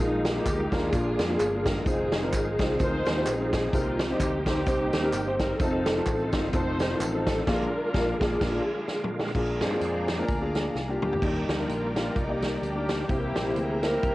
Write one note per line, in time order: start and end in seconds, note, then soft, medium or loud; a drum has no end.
0.00 0.39 A#1 loud
0.00 0.69 A#2 medium
0.00 0.90 D#3 medium
0.00 0.90 G#3 medium
0.00 0.28 A#3 medium
0.00 0.90 A#3 medium
0.00 0.28 D#4 medium
0.00 0.34 D#4 medium
0.00 0.90 F4 medium
0.00 0.29 F4 medium
0.00 0.29 G#4 medium
0.25 snare loud
0.25 closed hi-hat medium
0.25 tambourine medium
0.35 0.62 A#3 medium
0.35 0.62 D#4 medium
0.35 0.90 D#4 medium
0.35 0.62 F4 medium
0.35 0.74 G4 medium
0.35 0.63 G#4 medium
0.45 0.68 D2 medium
0.45 kick medium
0.45 clap loud
0.45 closed hi-hat medium
0.45 tambourine loud
0.72 0.89 D#2 medium
0.72 0.87 A#3 medium
0.72 1.62 D4 medium
0.72 0.88 D#4 medium
0.72 1.62 F4 medium
0.72 0.88 F4 medium
0.72 1.66 G#4 loud
0.72 0.88 A#4 medium
0.72 kick medium
0.72 snare medium
0.72 closed hi-hat medium
0.72 tambourine medium
0.92 1.15 A#1 medium
0.92 1.62 A#2 medium
0.92 0.99 C#3 medium
0.92 1.85 G#3 medium
0.92 1.21 A#3 medium
0.92 1.84 A#3 medium
0.92 1.21 D4 medium
0.92 1.22 F4 medium
0.92 1.84 F4 medium
0.92 1.22 G#4 medium
0.92 kick loud
0.92 clap medium
0.92 closed hi-hat medium
0.92 tambourine medium
0.99 1.87 D3 medium
1.19 1.36 F2 medium
1.19 snare loud
1.19 closed hi-hat medium
1.19 tambourine medium
1.29 1.45 A#3 medium
1.29 1.46 D4 medium
1.29 1.46 F4 medium
1.29 1.46 G#4 loud
1.39 1.79 G1 medium
1.39 clap medium
1.39 closed hi-hat medium
1.39 tambourine medium
1.52 1.78 A#3 medium
1.52 1.79 D4 medium
1.52 1.79 F4 medium
1.52 1.79 G#4 medium
1.66 1.86 A#4 medium
1.66 kick medium
1.66 snare loud
1.66 closed hi-hat medium
1.66 tambourine medium
1.86 2.33 F1 loud
1.86 3.69 D#3 medium
1.86 3.69 G#3 medium
1.86 3.69 C4 medium
1.86 2.15 C4 medium
1.86 2.33 C4 medium
1.86 2.15 D#4 medium
1.86 2.33 D#4 medium
1.86 3.69 F4 medium
1.86 2.15 F4 medium
1.86 2.16 G#4 medium
1.86 2.30 G#4 loud
1.86 kick loud
1.86 closed hi-hat medium
1.86 tambourine medium
2.12 snare loud
2.12 closed hi-hat medium
2.12 tambourine medium
2.23 2.49 C4 medium
2.23 2.49 D#4 medium
2.23 2.49 F4 medium
2.23 2.50 A#4 medium
2.33 2.55 G#1 medium
2.33 3.23 C4 medium
2.33 2.80 D#4 medium
2.33 2.77 G#4 medium
2.33 kick medium
2.33 clap loud
2.33 closed hi-hat medium
2.33 tambourine loud
2.59 2.76 C2 medium
2.59 2.74 C4 medium
2.59 2.75 D#4 medium
2.59 2.75 F4 medium
2.59 2.75 G#4 medium
2.59 kick medium
2.59 snare loud
2.59 closed hi-hat medium
2.59 tambourine medium
2.79 3.02 D2 medium
2.79 3.08 C4 medium
2.79 3.08 D#4 medium
2.79 3.28 D#4 medium
2.79 3.09 F4 medium
2.79 3.28 G#4 medium
2.79 3.09 A#4 medium
2.79 3.27 C5 loud
2.79 kick loud
2.79 clap medium
2.79 closed hi-hat medium
2.79 tambourine medium
3.06 3.24 D#2 medium
3.06 snare loud
3.06 closed hi-hat medium
3.06 tambourine medium
3.16 3.33 C4 medium
3.16 3.33 D#4 medium
3.16 3.33 F4 medium
3.16 3.33 G4 medium
3.26 3.67 A#1 loud
3.26 3.71 C4 medium
3.26 3.71 D#4 medium
3.26 3.74 G#4 medium
3.26 clap loud
3.26 closed hi-hat medium
3.26 tambourine loud
3.40 3.65 C4 medium
3.40 3.66 D#4 medium
3.40 3.66 F4 medium
3.40 3.66 G#4 medium
3.53 kick medium
3.53 snare loud
3.53 closed hi-hat medium
3.53 tambourine medium
3.73 4.13 C2 loud
3.73 4.43 C3 medium
3.73 5.57 A#3 medium
3.73 4.09 A#3 medium
3.73 4.02 C4 medium
3.73 5.57 C4 medium
3.73 5.56 D#4 medium
3.73 4.02 D#4 medium
3.73 4.11 F4 medium
3.73 5.56 G4 medium
3.73 4.03 G4 medium
3.73 4.03 A#4 medium
3.73 kick loud
3.73 closed hi-hat medium
3.73 tambourine medium
3.99 snare loud
3.99 closed hi-hat medium
3.99 tambourine medium
4.10 4.46 A#3 medium
4.10 4.36 C4 medium
4.10 4.37 D#4 medium
4.10 4.46 D#4 medium
4.10 4.37 G4 medium
4.10 4.46 G4 medium
4.10 4.37 C5 medium
4.19 4.67 D2 medium
4.19 kick medium
4.19 clap loud
4.19 closed hi-hat medium
4.19 tambourine medium
4.46 5.36 A#3 medium
4.46 4.62 C4 medium
4.46 5.37 D#4 medium
4.46 4.62 D#4 medium
4.46 5.36 G4 loud
4.46 4.62 G4 medium
4.46 4.62 C5 medium
4.46 kick medium
4.46 snare loud
4.46 closed hi-hat medium
4.46 tambourine medium
4.66 4.89 C2 loud
4.66 4.95 C4 medium
4.66 4.95 D#4 medium
4.66 4.96 G4 medium
4.66 4.96 C5 medium
4.66 kick loud
4.66 clap medium
4.66 closed hi-hat medium
4.66 tambourine medium
4.93 5.10 D#2 medium
4.93 snare loud
4.93 closed hi-hat medium
4.93 tambourine medium
5.02 5.19 C4 medium
5.02 5.20 D#4 medium
5.02 5.20 G4 medium
5.02 5.20 A#4 loud
5.13 5.53 G1 loud
5.13 clap loud
5.13 closed hi-hat medium
5.13 tambourine loud
5.26 5.52 C4 medium
5.26 5.52 D#4 medium
5.26 5.53 G4 medium
5.26 5.53 C5 medium
5.39 5.59 A#4 loud
5.39 kick medium
5.39 snare loud
5.39 closed hi-hat medium
5.39 tambourine medium
5.59 6.00 F1 loud
5.59 7.43 D#3 medium
5.59 7.43 A3 medium
5.59 6.07 C4 medium
5.59 5.89 C4 medium
5.59 7.43 C4 medium
5.59 6.07 D#4 medium
5.59 5.89 D#4 medium
5.59 7.43 F4 medium
5.59 5.89 F4 medium
5.59 6.03 A4 medium
5.59 5.90 A4 medium
5.59 kick loud
5.59 closed hi-hat medium
5.59 tambourine medium
5.86 snare loud
5.86 closed hi-hat medium
5.86 tambourine medium
5.96 6.23 C4 medium
5.96 6.23 D#4 medium
5.96 6.23 F4 medium
5.96 6.24 A4 medium
6.06 6.29 A1 loud
6.06 6.97 C4 medium
6.06 6.55 D#4 medium
6.06 6.51 A4 medium
6.06 kick medium
6.06 clap loud
6.06 closed hi-hat medium
6.06 tambourine loud
6.32 6.50 G1 medium
6.32 6.48 C4 medium
6.32 6.48 D#4 medium
6.32 6.49 F4 medium
6.32 6.49 C5 medium
6.32 kick medium
6.32 snare loud
6.32 closed hi-hat medium
6.32 tambourine medium
6.53 6.93 F1 loud
6.53 6.82 C4 medium
6.53 6.83 D#4 medium
6.53 7.01 D#4 medium
6.53 6.83 F4 medium
6.53 6.83 A4 medium
6.53 7.01 A4 medium
6.53 7.02 C5 loud
6.53 kick loud
6.53 clap medium
6.53 closed hi-hat medium
6.53 tambourine medium
6.79 snare loud
6.79 closed hi-hat medium
6.79 tambourine medium
6.89 7.06 C4 medium
6.89 7.07 D#4 medium
6.89 7.07 F4 medium
6.89 7.07 C5 medium
7.00 7.40 A1 loud
7.00 7.45 C4 medium
7.00 7.45 D#4 medium
7.00 7.48 A4 medium
7.00 clap medium
7.00 closed hi-hat medium
7.00 tambourine loud
7.13 7.39 C4 medium
7.13 7.39 D#4 medium
7.13 7.40 F4 medium
7.13 7.40 A4 medium
7.27 kick medium
7.27 snare loud
7.27 closed hi-hat medium
7.27 tambourine medium
7.47 7.65 A#1 medium
7.47 7.65 A#2 loud
7.47 9.31 D3 medium
7.47 9.31 G#3 medium
7.47 7.65 A#3 loud
7.47 9.31 A#3 medium
7.47 7.65 D4 loud
7.47 8.21 D4 medium
7.47 7.66 F4 loud
7.47 9.31 F4 medium
7.47 8.20 F4 medium
7.47 7.66 G#4 loud
7.47 8.22 A#4 medium
7.47 kick loud
7.47 snare loud
7.47 crash medium
7.94 8.12 A#1 loud
7.94 8.12 A#3 loud
7.94 8.12 D4 loud
7.94 8.13 F4 loud
7.94 kick loud
7.94 snare loud
8.20 8.34 A#1 loud
8.20 8.34 A#3 loud
8.20 8.35 D4 medium
8.20 9.11 D4 medium
8.20 8.35 F4 loud
8.20 9.11 F4 medium
8.20 9.15 G#4 medium
8.20 8.35 G#4 medium
8.20 kick loud
8.20 snare loud
8.40 8.59 A#1 loud
8.40 8.59 A#3 medium
8.40 8.59 D4 medium
8.40 8.59 F4 medium
8.40 kick loud
8.40 snare loud
8.40 crash medium
8.88 snare medium
9.04 mid tom medium
9.19 snare loud
9.35 9.62 A#1 loud
9.35 10.04 A#2 medium
9.35 9.63 A#3 medium
9.35 9.64 D4 medium
9.35 9.64 F4 medium
9.35 9.64 G#4 medium
9.35 11.21 D5 medium
9.35 11.21 F5 medium
9.35 11.21 G#5 medium
9.35 11.21 A#5 medium
9.35 kick loud
9.35 crash medium
9.61 9.78 G2 medium
9.61 10.25 G#3 medium
9.61 10.25 C4 soft
9.61 10.26 D4 medium
9.61 snare loud
9.61 closed hi-hat medium
9.72 10.08 A#3 medium
9.72 10.08 D4 medium
9.72 10.08 F4 medium
9.72 10.08 G#4 medium
9.81 10.21 F2 medium
9.81 closed hi-hat medium
10.08 snare medium
10.08 closed hi-hat medium
10.18 10.35 A#3 medium
10.18 10.35 D4 medium
10.18 10.35 F4 medium
10.18 10.35 A#4 medium
10.28 10.68 D2 medium
10.28 kick loud
10.28 closed hi-hat medium
10.41 10.75 A#3 medium
10.41 10.75 D4 medium
10.41 10.75 F4 medium
10.41 10.75 G#4 medium
10.55 snare medium
10.55 closed hi-hat medium
10.75 10.98 C2 medium
10.75 snare soft
10.88 11.14 A#3 medium
10.88 11.14 D4 medium
10.88 11.15 F4 medium
10.88 11.15 G4 medium
11.02 11.19 D2 medium
11.02 11.22 G4 medium
11.02 mid tom medium
11.13 floor tom medium
11.21 11.45 D#2 medium
11.21 11.91 D#3 medium
11.21 13.06 G3 medium
11.21 12.13 G3 medium
11.21 11.50 A#3 medium
11.21 13.06 A#3 medium
11.21 12.13 A#3 medium
11.21 11.51 D4 medium
11.21 11.51 D#4 medium
11.21 11.70 D#4 medium
11.21 13.06 G4 medium
11.21 11.51 G4 medium
11.21 13.07 A#4 medium
11.21 13.07 D5 medium
11.21 13.06 D5 medium
11.21 14.15 G5 medium
11.21 13.07 A#5 medium
11.21 kick loud
11.21 crash medium
11.48 11.66 D2 medium
11.48 snare loud
11.48 closed hi-hat medium
11.59 11.85 A#3 medium
11.59 11.85 D4 medium
11.59 11.85 D#4 medium
11.59 11.86 A#4 medium
11.68 12.08 A#1 medium
11.68 11.96 F4 medium
11.68 closed hi-hat medium
11.95 12.18 A#3 medium
11.95 12.19 D4 medium
11.95 12.19 D#4 medium
11.95 12.19 F4 medium
11.95 12.15 F4 medium
11.95 snare medium
11.95 closed hi-hat medium
12.16 12.56 C2 medium
12.16 13.06 G3 medium
12.16 12.64 A#3 medium
12.16 12.64 D#4 medium
12.16 kick loud
12.16 closed hi-hat medium
12.28 12.62 A#3 medium
12.28 12.62 D#4 medium
12.28 12.63 G4 medium
12.28 12.62 D5 medium
12.42 snare medium
12.42 closed hi-hat medium
12.62 13.02 D2 medium
12.62 13.07 A#3 medium
12.62 13.07 D4 medium
12.62 13.10 G4 medium
12.62 closed hi-hat medium
12.75 13.01 A#3 medium
12.75 13.02 D4 medium
12.75 13.02 D#4 medium
12.75 13.02 A#4 medium
12.89 snare loud
12.89 closed hi-hat medium
13.09 13.32 C2 medium
13.09 13.79 C3 medium
13.09 14.15 E3 medium
13.09 13.38 A#3 medium
13.09 14.15 A#3 medium
13.09 14.00 A#3 medium
13.09 14.15 C4 medium
13.09 13.38 C4 medium
13.09 13.39 E4 medium
13.09 13.83 E4 medium
13.09 14.15 G4 medium
13.09 13.39 G4 medium
13.09 13.54 G4 medium
13.09 14.15 C5 medium
13.09 14.15 E5 medium
13.09 14.15 A#5 medium
13.09 kick loud
13.09 closed hi-hat medium
13.36 13.53 A#1 medium
13.36 snare loud
13.36 closed hi-hat medium
13.46 13.72 A#3 medium
13.46 13.72 C4 medium
13.46 13.73 E4 medium
13.46 13.73 G4 medium
13.56 13.96 D2 medium
13.56 13.84 G#4 medium
13.56 closed hi-hat medium
13.82 14.05 A#3 medium
13.82 14.06 C4 medium
13.82 14.06 E4 medium
13.82 14.15 E4 medium
13.82 14.15 G4 medium
13.82 14.06 A#4 medium
13.82 14.15 A#4 loud
13.82 snare medium
13.82 closed hi-hat medium
14.03 14.15 C2 medium
14.03 kick loud
14.03 closed hi-hat medium